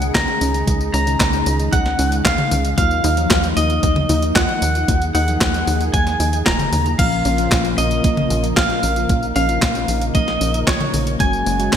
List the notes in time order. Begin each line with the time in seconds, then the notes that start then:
Already playing: C#2 C#3 D#3 G#3 C#4 D#4 G#4
0.02 closed hi-hat, tambourine
0.15 C#2 D#4 A#5 A#6, kick, snare, clap, closed hi-hat, tambourine
0.28 closed hi-hat
0.41 C#2 C#4, open hi-hat, tambourine
0.54 closed hi-hat, tambourine
0.67 C#2 C#3 G#3 C#4 D#4 G#4, kick, closed hi-hat, tambourine
0.81 tambourine
0.94 C#2 C#4 A#5 A#6, open hi-hat, tambourine
1.07 C#3 G#3 C#4 D#4 G#4, closed hi-hat, tambourine
1.20 C#2 D#4, kick, snare, clap, closed hi-hat, tambourine
1.33 closed hi-hat, tambourine
1.46 C#2 C#4, open hi-hat, tambourine
1.60 closed hi-hat, tambourine
1.72 C#2 G#3 F#5 F#6, kick, closed hi-hat, tambourine
1.86 snare, closed hi-hat
1.99 C#2 C#4, open hi-hat, tambourine
2.12 closed hi-hat, tambourine
2.25 C#2 D#4 F5 F6, kick, snare, clap, closed hi-hat, tambourine
2.38 closed hi-hat, mid tom
2.51 C#2 C#4, open hi-hat, mid tom, tambourine
2.65 closed hi-hat, tambourine
2.78 D#2 F#3 A#3 D#4 F4 F5 F6, kick, closed hi-hat, tambourine
2.91 tambourine
3.04 D#2 D#4, open hi-hat, tambourine
3.17 F3 F#3 A#3 D#4, closed hi-hat, tambourine
3.30 D#2 F4, kick, snare, clap, closed hi-hat, tambourine
3.44 closed hi-hat, tambourine
3.57 D#2 D#4 D#5 D#6, open hi-hat, tambourine
3.70 closed hi-hat, tambourine
3.83 D#2 A#3, kick, closed hi-hat, tambourine
3.96 closed hi-hat, mid tom
4.09 D#2 D#4, open hi-hat, tambourine
4.22 closed hi-hat, tambourine
4.36 D#2 F4 F#5 F#6, kick, snare, clap, closed hi-hat, tambourine
4.49 closed hi-hat
4.62 D#2 D#4, open hi-hat, tambourine
4.75 closed hi-hat, tambourine
4.88 D#2 F#3 A#3 D#4 F4 G#4, kick, closed hi-hat, tambourine
5.02 closed hi-hat, tambourine
5.15 D#2 D#4 F#5 F#6, open hi-hat, tambourine
5.28 F3 F#3 A#3 D#4, closed hi-hat, tambourine
5.41 D#2 F4, kick, snare, clap, closed hi-hat, tambourine
5.54 closed hi-hat, tambourine
5.67 D#2 D#4, open hi-hat, tambourine
5.81 closed hi-hat, tambourine
5.93 D#2 A#3 G#5 G#6, kick, closed hi-hat, tambourine
6.07 snare, closed hi-hat, tambourine
6.20 D#2 D#4, open hi-hat, tambourine
6.33 closed hi-hat, tambourine
6.46 D#1 F4 A#5 A#6, kick, snare, clap, closed hi-hat, tambourine
6.59 closed hi-hat, mid tom, tambourine
6.72 D#2 D#4, open hi-hat, mid tom, tambourine
6.86 closed hi-hat, tambourine
6.99 A#1 A#2 C#3 F3 A#3 C#4 F4 A#4 F5 F6, kick, closed hi-hat, crash, tambourine
7.12 tambourine
7.25 A#1 C#4, open hi-hat, tambourine
7.38 A#2 F3 A#3 C#4 F4, closed hi-hat, tambourine
7.52 A#1 F4, kick, snare, clap, closed hi-hat, tambourine
7.65 closed hi-hat, tambourine
7.78 A#1 C#4 D#5 D#6, open hi-hat, tambourine
7.91 closed hi-hat, tambourine
8.04 A#1 A#3, kick, closed hi-hat, tambourine
8.17 closed hi-hat, mid tom
8.30 A#1 C#4, open hi-hat, tambourine
8.44 closed hi-hat, tambourine
8.57 A#1 F4 F5 F6, kick, snare, clap, closed hi-hat, tambourine
8.70 closed hi-hat
8.83 A#1 C#4, open hi-hat, tambourine
8.96 closed hi-hat, tambourine
9.09 A#1 A#2 F3 A#3 C#4 D#4 F4, kick, closed hi-hat, tambourine
9.23 tambourine
9.36 A#1 C#4 F5 F6, open hi-hat, tambourine
9.49 A#2 F3 A#3 C#4 F4, closed hi-hat, tambourine
9.62 A#1 F4, kick, snare, clap, closed hi-hat, tambourine
9.75 closed hi-hat, tambourine
9.88 A#1 C#4, open hi-hat, tambourine
10.02 closed hi-hat, tambourine
10.15 A#1 A#3 D#5 D#6, kick, closed hi-hat, tambourine
10.28 snare, closed hi-hat
10.41 A#1 C#4, open hi-hat, tambourine
10.54 closed hi-hat, tambourine
10.67 A#1 F4 C#5 C#6, kick, snare, clap, closed hi-hat, tambourine
10.81 closed hi-hat, mid tom
10.94 A#1 C#4, open hi-hat, mid tom, tambourine
11.07 closed hi-hat, tambourine
11.20 F#1 F#3 G#3 A#3 C#4 F#4 G#5 G#6, kick, closed hi-hat, tambourine
11.33 tambourine
11.46 F#1 A#3, open hi-hat, tambourine
11.60 G#3 A#3 C#4 F#4, closed hi-hat, tambourine
11.73 F#1 C#4, kick, snare, clap, closed hi-hat, tambourine